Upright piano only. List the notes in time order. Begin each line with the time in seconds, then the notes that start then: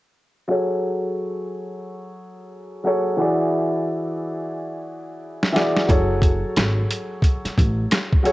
0.48 F#3 F#4 G#4 A4 C#5
2.83 F#3 F#4 G#4 A4 C#5
3.17 E3 E4 F#4 G#4 D5
5.52 E3 E4 F#4 G#4 D5
5.87 F#3 F#4 G#4 A4 C#5
8.23 F#3 F#4 G#4 A4 C#5